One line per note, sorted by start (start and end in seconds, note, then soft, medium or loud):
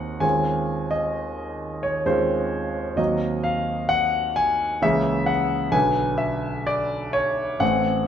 0.00 0.19 D#2 soft
0.00 0.19 A#3 soft
0.00 0.19 C4 soft
0.00 0.20 D#4 soft
0.00 0.20 F#4 soft
0.00 0.22 F#5 medium
0.00 0.19 A#5 soft
0.00 0.20 C6 soft
0.00 0.22 D#6 soft
0.00 0.23 F#6 soft
0.20 2.02 D#2 soft
0.20 2.02 G#3 soft
0.20 2.02 C4 soft
0.20 2.03 C#4 soft
0.20 2.03 F4 soft
0.20 0.90 G#5 medium
0.91 1.84 D#5 medium
1.83 2.07 C#5 medium
2.06 2.94 D#2 soft
2.06 2.95 G#3 soft
2.06 2.96 C4 soft
2.06 2.96 C#4 soft
2.06 2.96 F4 soft
2.06 2.98 C5 medium
2.96 4.77 D#2 soft
2.96 4.78 F#3 soft
2.96 4.78 A#3 soft
2.96 4.78 C4 soft
2.96 4.79 F#4 soft
2.96 3.43 D#5 medium
3.44 3.90 F5 medium
3.89 4.36 F#5 medium
4.36 4.82 G#5 medium
4.82 5.71 C#2 soft
4.82 5.71 E3 soft
4.82 5.71 A#3 soft
4.82 5.72 C#4 soft
4.82 5.72 G#4 soft
4.82 5.28 E5 medium
5.26 5.73 F#5 medium
5.72 7.56 B1 soft
5.72 7.56 D3 soft
5.72 7.57 F#3 soft
5.72 7.57 D4 soft
5.72 7.57 B4 soft
5.72 6.20 G#5 medium
6.18 6.66 E5 medium
6.67 7.14 D5 medium
7.13 7.61 C#5 medium
7.59 8.07 A1 soft
7.59 8.07 E3 soft
7.59 8.07 A3 soft
7.59 8.07 C4 soft
7.59 8.07 C5 soft
7.59 8.07 F#5 medium